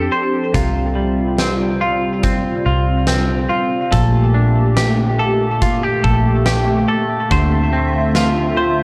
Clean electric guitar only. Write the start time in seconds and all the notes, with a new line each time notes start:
Already playing: F3 D4 A4 C5
0.12 C5
0.54 C3 F4
0.95 G3
1.38 C4
1.81 F4
2.23 C4
2.65 F4
3.07 C4
3.49 F4
3.91 A#2 A4
4.34 D4
4.77 G4
5.19 A4
5.61 F4
5.83 G4
6.04 A4
6.46 G4
6.88 A4
7.31 D3 C5
7.73 C4
8.16 F4
8.57 C5